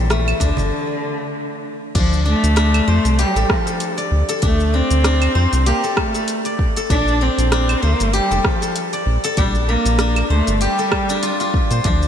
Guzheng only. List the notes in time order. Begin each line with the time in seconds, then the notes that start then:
Already playing: C4 D4 G4 A4 C5
0.10 A3
0.40 D4
1.95 D4
2.26 D4
2.56 D4
2.88 C5
3.19 G4
3.36 A4
3.67 A4
3.98 D5
4.29 A4
4.42 D4
4.74 D4
5.04 D4
5.35 C5
5.66 G4
5.84 A4
6.15 A4
6.46 D5
6.77 A4
6.90 D4
7.21 D4
7.52 D4
7.82 C5
8.13 G4
8.31 A4
8.62 A4
8.93 D5
9.24 A4
9.38 D4
9.69 D4
9.99 D4
10.30 C5
10.62 G4
10.79 A4
11.10 D4
11.23 F4
11.40 F4
11.71 C5
11.85 D4